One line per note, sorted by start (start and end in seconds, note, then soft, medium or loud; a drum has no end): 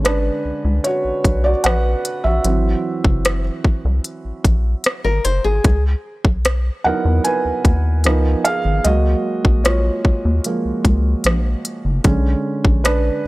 0.00 0.30 G#1 medium
0.00 2.41 D3 medium
0.00 2.41 G#3 medium
0.00 2.41 C#4 medium
0.04 0.82 D4 medium
0.04 0.87 B4 medium
0.04 cross-stick loud
0.04 closed hi-hat medium
0.45 0.53 C#2 soft
0.65 0.80 C#2 medium
0.84 1.41 F#4 medium
0.84 1.40 C#5 medium
0.84 closed hi-hat medium
1.05 1.13 B1 soft
1.24 1.55 B1 medium
1.24 kick medium
1.24 closed hi-hat medium
1.44 1.51 F#4 medium
1.44 1.49 D5 medium
1.64 1.95 A#1 medium
1.64 2.21 B4 medium
1.64 2.26 F#5 loud
1.64 cross-stick loud
1.64 closed hi-hat medium
2.05 closed hi-hat medium
2.24 2.40 A#1 medium
2.24 3.41 F#4 medium
2.24 3.40 E5 medium
2.44 2.75 G#1 loud
2.44 3.61 E3 medium
2.44 3.61 F#3 medium
2.44 3.61 C4 medium
2.44 closed hi-hat medium
3.04 3.50 F#1 medium
3.04 kick medium
3.25 cross-stick loud
3.25 closed hi-hat medium
3.64 3.73 C2 soft
3.64 kick medium
3.85 4.00 C2 medium
4.04 closed hi-hat medium
4.25 4.33 A#1 soft
4.44 4.75 A#1 medium
4.44 kick medium
4.44 closed hi-hat medium
4.84 cross-stick loud
4.84 closed hi-hat medium
5.04 5.20 G#1 medium
5.04 5.24 A#4 medium
5.24 5.40 F#1 medium
5.24 5.44 C5 medium
5.24 closed hi-hat medium
5.44 5.60 G#1 medium
5.44 5.83 G#4 medium
5.64 5.95 C#2 loud
5.64 kick loud
5.64 closed hi-hat medium
6.25 6.70 B1 medium
6.25 kick medium
6.45 cross-stick loud
6.45 closed hi-hat medium
6.84 6.93 E2 soft
6.84 8.01 F#3 soft
6.84 8.01 B3 medium
6.84 8.01 D#4 medium
6.84 8.01 E4 medium
6.84 7.23 A#4 medium
6.84 7.26 F#5 medium
7.05 7.20 E2 medium
7.24 8.42 B4 medium
7.24 8.48 G#5 medium
7.24 closed hi-hat medium
7.45 7.53 D#2 soft
7.65 8.07 D#2 medium
7.65 kick medium
7.65 closed hi-hat medium
8.04 8.35 C#2 loud
8.04 8.58 F3 medium
8.04 8.58 B3 medium
8.04 8.59 D#4 medium
8.04 8.58 A#4 medium
8.04 cross-stick loud
8.04 closed hi-hat medium
8.44 8.83 G#4 medium
8.44 8.86 F5 medium
8.44 closed hi-hat medium
8.65 8.80 G#1 medium
8.84 9.15 C#2 loud
8.84 12.01 F#3 medium
8.84 10.44 G#3 soft
8.84 10.45 A#3 medium
8.84 9.62 F#4 medium
8.84 9.60 D#5 loud
8.84 closed hi-hat medium
9.45 9.91 A#1 medium
9.45 kick medium
9.64 11.22 F4 medium
9.64 11.20 C#5 medium
9.64 cross-stick loud
9.64 closed hi-hat medium
10.05 10.13 D#2 soft
10.05 kick medium
10.25 10.40 D#2 medium
10.44 10.81 F3 soft
10.44 10.81 G#3 soft
10.44 10.82 A#3 medium
10.44 closed hi-hat medium
10.65 10.73 C#2 soft
10.85 11.15 C#2 medium
10.85 kick medium
10.85 closed hi-hat medium
11.24 11.55 A#1 medium
11.24 cross-stick loud
11.24 closed hi-hat medium
11.65 closed hi-hat medium
11.85 12.00 F#1 medium
12.04 12.35 B1 loud
12.04 13.21 D3 medium
12.04 13.21 G#3 medium
12.04 13.21 C#4 medium
12.04 kick loud
12.04 closed hi-hat medium
12.65 13.10 A#1 medium
12.65 kick loud
12.84 13.27 D4 medium
12.84 13.27 B4 medium
12.84 cross-stick loud
12.84 closed hi-hat medium